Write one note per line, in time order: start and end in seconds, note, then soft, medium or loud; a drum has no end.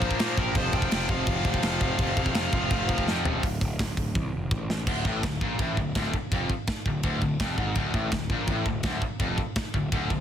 0.00 0.12 A#1 medium
0.00 0.20 A#2 medium
0.00 0.21 F3 medium
0.00 0.54 A#3 medium
0.00 0.20 A#3 loud
0.00 0.34 F4 medium
0.00 0.53 F4 medium
0.00 0.39 C5 medium
0.00 0.53 C5 medium
0.00 kick medium
0.00 crash medium
0.11 kick medium
0.19 0.34 A#2 medium
0.19 0.37 A#2 medium
0.19 0.38 F3 loud
0.19 0.38 A#3 loud
0.19 snare loud
0.19 crash medium
0.37 0.52 A#1 medium
0.37 0.55 A#2 medium
0.37 0.56 F3 medium
0.37 0.55 A#3 medium
0.37 0.55 G4 medium
0.37 0.57 A#4 medium
0.37 kick medium
0.37 crash medium
0.55 0.69 F1 loud
0.55 0.73 F2 loud
0.55 0.73 C3 loud
0.55 3.40 F3 medium
0.55 0.74 F3 loud
0.55 3.40 C4 medium
0.55 3.40 G4 medium
0.55 0.73 A4 medium
0.55 0.75 C5 medium
0.55 kick loud
0.55 crash loud
0.72 0.87 F1 medium
0.72 0.91 F2 medium
0.72 0.91 C3 medium
0.72 0.92 F3 loud
0.72 1.07 C5 medium
0.72 1.10 G5 loud
0.72 kick medium
0.72 crash medium
0.82 kick medium
0.91 1.07 F1 medium
0.91 1.09 F2 medium
0.91 1.09 C3 medium
0.91 1.10 F3 loud
0.91 snare loud
0.91 crash medium
1.08 1.23 F1 medium
1.08 1.27 F2 medium
1.08 1.27 C3 medium
1.08 1.29 F3 medium
1.08 3.03 C5 medium
1.08 3.03 F5 medium
1.08 kick medium
1.08 crash medium
1.27 1.42 F1 loud
1.27 1.44 F2 loud
1.27 1.45 C3 loud
1.27 1.46 F3 loud
1.27 kick loud
1.27 crash medium
1.45 1.59 F1 medium
1.45 1.61 F2 medium
1.45 1.62 C3 medium
1.45 1.63 F3 loud
1.45 kick medium
1.45 crash medium
1.54 kick medium
1.63 1.92 F1 medium
1.63 1.80 F2 medium
1.63 1.80 C3 medium
1.63 1.82 F3 loud
1.63 snare loud
1.63 crash medium
1.81 1.98 F2 medium
1.81 1.99 C3 loud
1.81 1.99 F3 loud
1.81 kick medium
1.81 crash medium
1.98 2.13 F1 medium
1.98 2.15 F2 loud
1.98 2.16 C3 loud
1.98 2.16 F3 loud
1.98 kick loud
1.98 crash medium
2.16 2.31 F1 medium
2.16 2.34 F2 medium
2.16 2.35 C3 medium
2.16 2.35 F3 medium
2.16 kick medium
2.16 crash medium
2.26 kick medium
2.33 2.49 F1 loud
2.33 2.52 F2 medium
2.33 2.53 C3 loud
2.33 2.53 F3 medium
2.33 snare loud
2.33 crash medium
2.52 2.67 F1 medium
2.52 2.69 F2 medium
2.52 2.70 C3 medium
2.52 2.70 F3 medium
2.52 kick medium
2.52 crash medium
2.70 2.99 F1 loud
2.70 2.87 F2 loud
2.70 2.88 C3 loud
2.70 2.87 F3 loud
2.70 kick loud
2.70 crash medium
2.88 3.06 F2 medium
2.88 3.06 C3 medium
2.88 3.06 F3 loud
2.88 kick medium
2.88 crash medium
2.98 kick medium
3.06 3.21 F2 medium
3.06 3.24 F2 medium
3.06 3.25 C3 loud
3.06 3.25 F3 medium
3.06 snare medium
3.25 3.39 D#1 medium
3.25 3.42 F2 medium
3.25 3.43 C3 medium
3.25 3.43 F3 medium
3.25 floor tom medium
3.43 3.60 D1 medium
3.43 kick loud
3.43 open hi-hat medium
3.61 3.78 D1 medium
3.61 kick medium
3.61 open hi-hat medium
3.79 4.13 D1 medium
3.79 kick loud
3.79 snare loud
3.79 open hi-hat medium
3.97 kick medium
3.97 open hi-hat medium
4.15 4.32 C2 medium
4.15 kick loud
4.15 high tom medium
4.34 4.50 F1 medium
4.51 4.68 A1 medium
4.51 kick loud
4.70 4.86 A1 medium
4.70 snare medium
4.86 5.04 D1 medium
4.86 5.05 D2 loud
4.86 kick loud
4.86 crash loud
5.05 5.22 A1 medium
5.05 5.23 A2 medium
5.05 kick medium
5.23 5.40 D1 medium
5.23 5.38 D2 medium
5.23 kick loud
5.23 snare loud
5.23 ride bell medium
5.41 5.58 A#1 medium
5.41 5.59 A#2 medium
5.41 kick medium
5.59 5.76 A1 medium
5.59 5.77 A2 loud
5.59 kick loud
5.59 ride bell medium
5.77 5.94 D1 medium
5.77 5.92 D2 medium
5.77 kick medium
5.95 6.12 D1 medium
5.95 6.13 D2 loud
5.95 kick loud
5.95 snare loud
5.95 ride bell medium
6.13 muted picked electric bass stroke soft
6.13 muted distorted electric guitar stroke medium
6.13 kick medium
6.31 6.48 F1 medium
6.31 6.50 F2 loud
6.31 kick loud
6.31 ride bell medium
6.50 kick medium
6.67 kick loud
6.67 snare loud
6.67 ride bell medium
6.86 7.03 D1 medium
6.86 7.01 D2 medium
6.86 kick medium
7.03 7.20 D1 medium
7.03 7.21 D2 loud
7.03 kick loud
7.03 ride bell medium
7.21 7.39 D1 medium
7.21 7.37 D2 medium
7.21 kick medium
7.39 7.57 F1 medium
7.39 7.57 F2 loud
7.39 kick loud
7.39 snare loud
7.39 ride bell medium
7.57 7.75 G#1 medium
7.57 7.76 G#2 medium
7.57 kick medium
7.75 7.93 D1 loud
7.75 7.93 D2 loud
7.75 kick loud
7.75 ride bell medium
7.94 8.11 A1 medium
7.94 8.12 A2 medium
7.94 kick medium
8.11 8.29 D1 medium
8.11 8.27 D2 medium
8.11 kick loud
8.11 snare loud
8.11 ride bell medium
8.29 8.47 A#1 medium
8.29 8.48 A#2 loud
8.29 kick medium
8.47 8.64 A1 medium
8.47 8.67 A2 loud
8.47 kick loud
8.47 ride bell medium
8.66 8.83 D1 medium
8.66 8.82 D2 medium
8.66 kick medium
8.83 9.01 D1 medium
8.83 9.01 D2 loud
8.83 kick loud
8.83 snare loud
8.83 ride bell medium
9.01 muted picked electric bass stroke soft
9.01 muted distorted electric guitar stroke medium
9.01 kick medium
9.19 9.37 F1 medium
9.19 9.38 F2 loud
9.19 kick loud
9.19 ride bell medium
9.38 kick medium
9.56 kick loud
9.56 snare loud
9.56 ride bell medium
9.74 9.91 D1 medium
9.74 9.89 D2 medium
9.74 kick medium
9.92 10.09 D1 loud
9.92 10.10 D2 loud
9.92 kick loud
9.92 ride bell medium
10.10 10.20 D1 medium
10.10 10.20 D2 medium
10.10 kick medium